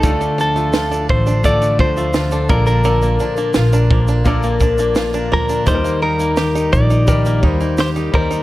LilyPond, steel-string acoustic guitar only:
\new Staff \with { instrumentName = "Steel-string acoustic guitar" } { \clef bass \time 4/4 \key ees \lydian \tempo 4 = 85 <d a'>16 d'16 f16 f'16 d16 a'16 f8 <d a'>16 d'16 f16 f'16 d16 a'16 bes,8 | <bes, bes'>16 bes16 f16 d'16 bes,16 bes'16 f8 <bes, bes'>16 bes16 f16 d'16 bes,16 bes'16 f8 | <ees g'>16 bes16 g16 ees'16 ees16 g'16 g8 <ees g'>16 bes16 g16 ees'16 ees16 g'16 ees8 | }